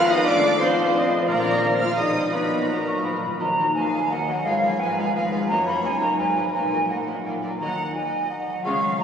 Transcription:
Already playing: G#1 G#2 F3 G#3 A#4 F5 G#5
0.01 G#4
0.09 D#4 F4 D#5 D#6
0.18 G#3
0.25 A1 A2 D4 A4 D5 D6
0.35 D#3
0.44 F3
0.53 F4
0.59 C4 C5 C6
0.70 F4
0.87 C6
0.95 D#5 F5
1.04 F4
1.12 C5
1.21 F3
1.27 A#1 A#2 F3 A#3 A#4 D5 A#5
1.38 A#3
1.46 F3
1.63 A#4 D5
1.71 F4
1.79 F4 F5 F6
1.89 D6
1.96 B1 B2 G#3 D#4 G#4 D#5 D#6
2.07 B3
2.16 G#3
2.24 D#4
2.32 A#1 A#2 F#3 B3 F#4 B4 B5
2.43 A#3
2.51 F#3
2.60 D#4
2.68 A#3 A#4 D#5 A#5
2.78 F#4
2.86 D#5 C#6
2.95 D#6
3.03 A#2 F3 B5
3.12 A#2 A#3
3.19 A#2 F3
3.26 A#2
3.31 F4
3.39 D#2 D#3 F#3 F#4 A#4 D#5 A#5
3.57 F#3 D#4 F#4 A#4 D#5
3.75 D#2 F#3 F#4 A#4 D#5 F5 G#5
3.93 F#3 F#4 A#4 D#5
4.10 D#2 F#3 F#4 A#4 D#5 F#5
4.28 F#3 F#4 A#4 D#5
4.45 G#1 G#2 G#3 F4 B4 C#5 F5
4.62 F3 G#3 F4 B4 F5
4.80 G#1 G#2 G#3 F4 B4 F5 G#5
4.97 G#3 F4 B4 F5
5.14 G#1 G#2 G#3 F4 B4 F5
5.31 G#3 F4 B4 F5
5.48 F#1 F#2 A#3 F#4 A#4 C#5 D#5 A#5
5.66 F#3 A#3 F#4 A#4 D#5 B5
5.83 F#1 F#2 A#3 D#4 F#4 A#4 D#5 G#5
6.00 A#3 F#4 A#4 D#5 A#5
6.17 G#1 G#2 F3 F4 B4 D#5 G#5
6.35 F3 D#4 F4 B4 D#5
6.53 A#1 A#2 A#3 F#4 A#4 D#5 G#5
6.71 F#3 A#3 F#4 A#4 D#5
6.89 A#1 A#2 A#3 D#4 F#4 A#4 D#5 F#5
7.07 A#3 F#4 A#4 D#5
7.24 A#1 A#2 A#3 F4 A#4 D5
7.42 A#3 D4 F4 A#4 D5
7.59 D#2 D#3 F#3 F#4 A#4 D#5 F#5 A#5
7.77 D#4
7.95 F#4 D#5 G#5
8.12 D#5
8.29 F#4 F#5
8.47 F#3
8.64 C#2 C#3 G#3 C#4 F4 F5 C#6
8.82 F3
8.99 F4 D#5 A#5

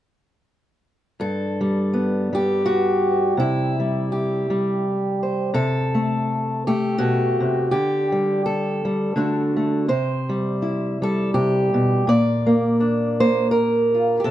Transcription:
1.20 G2 A4
1.61 G3
1.93 B3
2.33 G3 G4
2.66 F#4
3.37 C3 E4
3.80 G3
4.12 G4
4.50 G3
5.23 C5
5.54 C3 A4
5.95 A3
6.67 A3 G4
6.98 B2 F#4
7.40 C3
7.71 D3 G4
8.12 G3
8.46 A4
8.85 G3
9.16 D3 A3 D4 F#4
9.57 A3
9.88 C3 C5
10.29 G3
10.62 E4
11.02 G3 A4
11.34 C3 G4
11.74 B2
12.07 A#2 D5
12.46 A#3
12.80 D4
13.20 A#3 C5
13.51 A#4
13.94 F4
14.20 G4
14.24 C3 A4

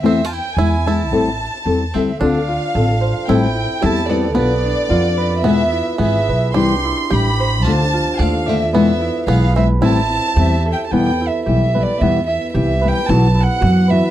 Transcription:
0.03 E2 E3 A3 C4 E4 A4 E5
0.24 F4 A5
0.30 E4 G5
0.55 E2 G#3 B3 E4 G#5
0.59 G#4
0.85 G#3 B3 E4 G#4 A5
1.10 A1 A2 G3 C4 E4 A4
1.65 E2 G3 C4 E4 A4
1.94 D2 G3 C4 E4 A4 E5
2.20 D2 D3 C4 D4 F4 A4 F5
2.48 F4
2.74 A1 D3 C4 F4 A4
3.01 C5
3.27 A1 A2 G3 C4 E4 A4 G5
3.55 E4
3.81 E2 G3 C4 E4 G4 A4 A5
4.08 G3 B3 C4 E4 A4 D5
4.34 B1 B3 D4 F4 B4 D5
4.64 D4
4.88 F2 B3 D4 F4 B4
5.17 B4
5.44 E2 B2 E3 G#3 B3 G#4 E5
5.72 E4
5.98 G#1 E3 G#3 B3 G#4 E5
6.28 B1 B4
6.54 C2 C3 E3 G3 D4 E4 G4 C6
6.85 E4
7.10 A1 E3 G3 D4 E4 G4 B5
7.40 C5
7.64 D2 D3 A3 D4 F4 A5
7.93 F4
8.19 D#2 D3 A3 D4 F4 A4 F5
8.46 D3 A3 C4 D4 F4 D5 E5
8.73 E2 B2 E3 G#3 B3 E4 E5
9.01 E4
9.27 B1 E3 G#3 B3 E4 G#4 F5
9.56 E3 G#3 B3 C4 E4 B4 E5
9.81 A1 A2 E3 G3 C4 E4 A5
10.10 E4
10.36 E2 E3 G3 C4 E4 G4 E5
10.66 A4
10.72 G5
10.85 A5
10.91 E2 B2 E3 G3 B3 E4 G5
11.21 E4
11.28 E5
11.45 B1 E3 G3 B3 E4 G4 E5
11.74 E3 G3 B3 E4 B4
11.82 D5
11.99 E2 B2 E3 G3 B3 E5
12.03 E4
12.26 E4 E5
12.53 C2 E3 G3 B3 E4 G4 E5
12.81 E3 G3 B3 B4
12.85 E4 G5
13.07 B1 B2 E3 B3 E4 F#4 A5
13.35 E4
13.43 F#5
13.60 F#2 E3 B3 E4 F#4
13.88 E3 B3 B4 E5
13.92 E4 F#4

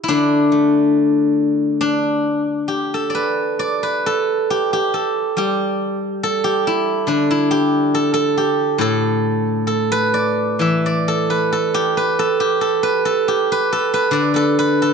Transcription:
Already playing: G4
0.04 E4
0.08 D3 D4
0.52 A3
1.81 D4
2.68 G4
2.94 A4
3.10 D5
3.15 B4
3.59 D5
3.83 B4
4.06 A4
4.50 G4
4.73 G4
4.94 A4
5.37 G3 G4
6.23 A4
6.44 G4
6.67 E4
7.07 D3 D4
7.31 E4
7.51 G4
7.95 A4
8.14 A4
8.38 G4
8.78 A2 A4
9.67 A4
9.92 B4
10.14 D5
10.59 E3 E5
10.86 D5
11.08 A4
11.30 B4
11.53 A4
11.74 G4
11.97 B4
12.19 A4
12.40 G4
12.61 A4
12.83 B4
13.05 A4
13.28 G4
13.52 B4
13.72 A4
13.94 B4
14.11 D3 D5
14.34 A4 B4
14.59 B4
14.82 A4

